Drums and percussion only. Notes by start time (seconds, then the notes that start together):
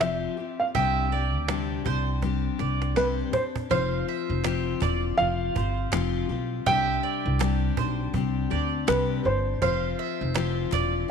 0.01 cajon slap
0.38 cajon slap
0.75 cajon bass
1.34 cajon slap
1.48 cajon slap
1.86 cajon bass
2.07 cajon slap
2.22 cajon bass, cajon slap
2.59 cajon slap
2.82 cajon slap
2.96 cajon slap
3.33 cajon bass
3.56 cajon bass
3.71 cajon bass
4.08 cajon slap
4.30 cajon slap
4.44 cajon slap, clap
4.81 cajon bass, clap
5.18 cajon slap
5.56 cajon bass
5.77 cajon slap
5.93 cajon slap, clap
6.30 cajon slap
6.66 cajon bass
7.04 cajon slap
7.41 cajon slap, clap
7.77 cajon bass
8.14 cajon bass, cajon slap
8.73 cajon slap
8.88 cajon slap, clap
9.25 cajon slap
9.62 cajon bass
9.99 cajon slap
10.21 cajon slap
10.35 cajon slap, clap
10.72 cajon bass, clap